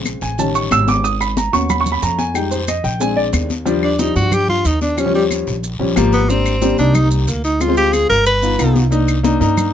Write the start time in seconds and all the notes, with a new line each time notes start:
Already playing: A#1 C#3 G#3 C4
0.05 high conga, short guiro, claves, maracas
0.21 A1 G#5, high conga, short guiro, maracas
0.38 D#3 G3 C#4 A5, high conga, long guiro, maracas
0.55 C#6, high conga, maracas
0.71 G#1 E6, high conga, short guiro, claves, maracas
0.88 D6, high conga, short guiro, maracas
1.04 D#6, long guiro, maracas
1.21 B5, high conga, claves, maracas
1.37 A#5, high conga, short guiro, maracas
1.52 D#2 A#3 B3 C#4 F#4 C#6, short guiro, maracas
1.70 B5, high conga, low conga, long guiro, claves, maracas
1.81 C#6
1.86 high conga, low conga, maracas
1.92 B5
2.02 F2 A#5, high conga, short guiro, maracas
2.19 G#5, high conga, short guiro, maracas
2.34 G3 G#3 D#4 G5, high conga, long guiro, claves, maracas
2.51 C5, high conga, maracas
2.68 D#5, high conga, short guiro, claves, maracas
2.84 A#1 G5, high conga, short guiro, maracas
3.00 G#3 C4 D4 G#5, high conga, long guiro, maracas
3.17 D5, high conga
3.33 D#2, high conga, short guiro, claves, maracas
3.50 high conga, short guiro, maracas
3.65 F3 G3 D4, high conga, long guiro, maracas
3.83 D4, high conga, claves
3.99 F3 G3 D4 D#4, high conga, short guiro, maracas
4.15 G2 F3 G3 D4 F#4, short guiro, maracas
4.32 G4, high conga, low conga, long guiro, claves, maracas
4.49 F4, high conga, low conga
4.65 D#2 D#4, high conga, short guiro, maracas
4.81 D4, high conga, short guiro, maracas
4.97 F3 G3 C#4, high conga, long guiro, claves, maracas
5.06 F3 G3 C#4
5.15 G3, high conga
5.31 high conga, short guiro, claves, maracas
5.47 A#1, high conga, short guiro, maracas
5.63 high conga, long guiro, maracas
5.79 A#1 F3 G3 C#4, high conga
5.96 G#1 F3 G3 A#3, high conga, short guiro, claves, maracas
6.12 B3, high conga, short guiro, maracas
6.29 G3 A#3 C4 D4, long guiro, maracas
6.46 high conga, claves, maracas
6.62 G3 A#3 C4 D4, high conga, short guiro, maracas
6.78 C2 G3 A#3 C4 D4 D#4, short guiro, maracas
6.94 D#4, high conga, low conga, long guiro, claves, maracas
7.11 G3, high conga, maracas
7.27 D2 A#3, high conga, short guiro, maracas
7.44 D#4, short guiro, maracas
7.60 G#3 C4 F4, high conga, long guiro, claves, maracas
7.68 G#3 C4 F4
7.77 G4, high conga, maracas
7.93 G#4, high conga, short guiro, claves, maracas
8.09 G1 A#4, high conga, short guiro, maracas
8.26 B4, high conga, long guiro, maracas
8.42 B3 D#4 F4, high conga, maracas
8.58 C2 B3 D#4 F4, high conga, short guiro, claves, maracas
8.76 high conga, short guiro, maracas
8.91 A#3 D4 D#4, high conga, long guiro, maracas
9.08 high conga, claves, maracas
9.23 A#3 D4 D#4, high conga, short guiro, maracas
9.40 G2 A#3 D4 D#4, short guiro, maracas
9.57 high conga, low conga, long guiro, claves, maracas